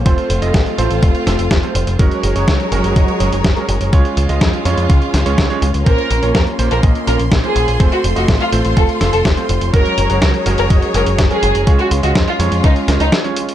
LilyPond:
<<
  \new Staff \with { instrumentName = "Violin section" } { \time 4/4 \key ges \lydian \tempo 4 = 124 r1 | r1 | r1 | bes'8. r16 bes'8. bes'8. bes'8. aes'8. |
r16 ges'8 ges'8 f'8. a'8. a'8. r8 | bes'8. r16 bes'8. bes'8. bes'8. aes'8. | r16 ges'8 ges'8 f'8. ees'8. ees'8. r8 | }
  \new Staff \with { instrumentName = "String section" } { \time 4/4 \key ges \lydian << { c'1 | <ges ges' bes'>1 | des'1 | c'''1~ |
c'''1 | <ges ges' bes'>1 | des'1 | } \\ { <a f'>1 | <aes' des''>1 | <aes f'>1 | bes1 |
<a f'>1 | <aes' des''>1 | <aes f'>1 | } >> }
  \new Staff \with { instrumentName = "Electric grand piano" } { \time 4/4 \key ges \lydian <a c' f' c''>8. <a c' f' ees''>8. <a c' f' c''>8 <a c' f' f''>8 <a c' f' a'>16 r8 <a c' f' c''>8. | <aes des' ges' bes'>8. <aes des' ges' des''>8. <aes des' ges' bes'>8 <aes des' ges' ees''>8 <aes des' ges' aes'>16 r8 <aes des' ges' bes'>8. | <aes des' f' des''>8. <aes des' f' ees''>8. <aes des' f' des''>8 <aes des' f' f''>8 r16 <aes des' f' des''>8 <aes des' f' des''>16 r8 | <bes des' f' c''>8. <bes des' f' des''>8. <bes des' f' c''>8 <bes des' f' ees''>8 <bes des' f' bes'>16 r8 <bes des' f' c''>8. |
<a c' f' c''>8. <a c' f' ees''>8. <a c' f' c''>8 <a c' f' f''>8 <a c' f' a'>16 r8 <a c' f' c''>8. | <aes des' ges' bes'>8. <aes des' ges' des''>8. <aes des' ges' bes'>8 <aes des' ges' ees''>8 <aes des' ges' aes'>16 r8 <aes des' ges' bes'>8. | <aes des' f' des''>8. <aes des' f' ees''>8. <aes des' f' des''>8 <aes des' f' f''>8 <aes des' f' bes'>16 r8 <aes des' f' des''>8. | }
  \new Staff \with { instrumentName = "Picked electric bass" } { \clef bass \time 4/4 \key ges \lydian f,,16 r16 f,,16 f,,16 a,,16 r16 a,,16 a,,16 f,,16 r16 f,,16 f,,16 f,,16 r16 f,,16 f,,16 | ges,,16 r16 ges,,16 ges,,16 des,16 r16 ges,,16 ges,,16 ges,,16 r16 ges,,16 ges,,16 ges,,16 r16 ges,,16 ges,,16 | des,16 r16 des,16 des,16 f,16 r16 f,16 f,16 des,16 r16 des,16 des,16 des,16 r16 des,16 des,16 | bes,,16 r16 bes,,16 bes,,16 f,16 r16 bes,,16 bes,,16 bes,,16 r16 bes,,16 bes,,16 bes,,16 r16 bes,,16 bes,,16 |
f,,16 r16 f,,16 f,,16 a,,16 r16 a,,16 a,,16 f,,16 r16 f,,16 f,,16 f,,16 r16 f,,16 f,,16 | ges,,16 r16 ges,,16 ges,,16 des,16 r16 ges,,16 ges,,16 ges,,16 r16 ges,,16 ges,,16 ges,,16 r16 ges,,16 ges,,16 | des,16 r16 des,16 des,16 f,16 r16 f,16 f,16 des,16 r16 des,16 des,16 r4 | }
  \new DrumStaff \with { instrumentName = "Drums" } \drummode { \time 4/4 <hh bd>16 hh16 hh16 hh16 <hh bd sn>16 hh16 hh16 hh16 <hh bd>16 hh16 <hh sn>16 hh16 <hh bd sn>16 hh16 hh16 hh16 | <hh bd>16 hh16 hh16 hh16 <hh bd sn>16 hh16 hh16 hh16 <hh bd>16 hh16 hh16 hh16 <hh bd sn>16 hh16 hh16 hh16 | <hh bd>16 hh16 hh16 hh16 <hh bd sn>16 hh16 hh16 hh16 <hh bd>16 hh16 <hh sn>16 hh16 <hh bd sn>16 hh16 hh16 hh16 | <hh bd>16 hh16 hh16 hh16 <hh bd sn>16 hh16 hh16 hh16 <hh bd>16 hh16 hh16 hh16 <hh bd sn>16 hh16 hh16 hh16 |
<hh bd>16 hh16 hh16 hh16 <hh bd sn>16 hh16 hh16 hh16 <hh bd>16 hh16 <hh sn>16 hh16 <hh bd sn>16 hh16 hh16 hh16 | <hh bd>16 hh16 hh16 hh16 <hh bd sn>16 hh16 hh16 hh16 <hh bd>16 hh16 hh16 hh16 <hh bd sn>16 hh16 hh16 hh16 | <hh bd>16 hh16 hh16 hh16 <hh bd sn>16 hh16 hh16 hh16 <hh bd>16 hh16 <hh sn>16 hh16 <hh sn>16 hh16 hh16 hh16 | }
>>